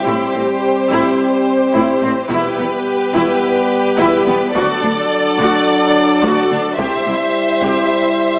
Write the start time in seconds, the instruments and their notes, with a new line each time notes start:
Already playing: french horn section G3, violin section G4
0.05 double bass section A1, cello section A2, french horn section C4, viola section E4, violin section C5
0.34 double bass section A1, cello section A2, viola section C4
0.89 double bass section A1, cello section A2, viola section E4
1.74 double bass section A1, cello section A2, viola section E4
2.02 double bass section A1, cello section A2, viola section C4
2.29 double bass section E1, cello section E2, french horn section G3 B3, viola section E4, violin section G4 B4, taiko
2.57 double bass section E1, cello section E2, viola section B3
3.13 double bass section E1, cello section E2, viola section E4, taiko
3.98 double bass section E1, cello section E2, viola section E4
4.26 double bass section E1, cello section E2, viola section B3
4.54 double bass section D2, cello section D2, french horn section F#3 D4, viola section F#4, violin section A4 D5
4.83 double bass section D2, cello section D2, viola section D4
5.38 double bass section D2, cello section D2, viola section F#4
6.22 double bass section D2, cello section D2, viola section F#4
6.51 double bass section D2, cello section D2, viola section D4
6.78 double bass section C2, cello section C2, french horn section G3 E4, viola section G4, violin section C5 E5, taiko
7.06 double bass section C2, cello section C2, viola section E4
7.62 double bass section C2, cello section C2, viola section G4, taiko